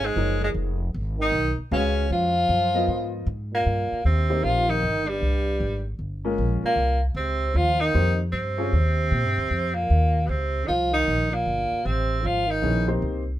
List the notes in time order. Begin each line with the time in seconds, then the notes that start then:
Already playing: G#1
0.04 G#2 G#3
0.16 F#1 F3 A#3 D#4 G#4 C#5
0.41 G#2 G#3
0.54 F1
0.94 G#1
1.18 D#3
1.22 D#4
1.32 B1
1.58 muted upright bass stroke
1.72 C#2 C#3 G#3 C#4 F#4 B4 F5
2.10 F2 F3 F4
2.49 F#2
2.74 F3 B3 F4 A#4 D#5
2.88 G#2
3.27 G#2
3.51 A#2 A#3
3.66 G2
3.92 muted upright bass stroke
4.04 D#2 C3 C4
4.30 A#3 C4 D#4 G4 C5
4.43 A#1 F3 F4
4.69 D#3 D#4
4.83 G1
5.08 G2 G3
5.21 C2
5.60 G#1
5.99 G1
6.25 G#3 A#3 C#4 F4 A#4
6.38 A#1
6.63 A#2 A#3, muted upright bass stroke
6.76 C2
7.15 C#2 C3 C4
7.55 D#2 F3 F4
7.80 D#3 D#4
7.95 F2 A#3 C4 D#4 G4 C5
8.32 G2 C3 C4
8.58 C4 C#4 F4 G#4 C#5
8.73 D#2
9.11 A#2
9.25 G2
9.38 D#2
9.51 F2
9.74 A#2 A#3
9.90 D#2
10.24 B2 C3 B3
10.29 C#2 C4
10.66 C2 D#3 F3 D#4 F4
10.92 D#3 D#4
11.08 A#1
11.31 A#2 A#3
11.46 G1
11.72 muted upright bass stroke
11.85 A1 C3 C4
12.22 G#1 F3
12.26 F4
12.47 D#3 D#4
12.62 A#1 B3 C#4 E4 G#4 C#5
12.88 A#3 C4 D#4 G4 C5
13.02 C2